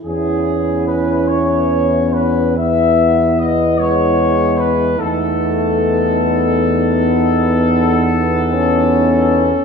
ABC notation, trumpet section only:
X:1
M:12/8
L:1/8
Q:3/8=50
K:E
V:1 name="Trumpet section"
G2 B c2 B e2 d c2 B | A12 |]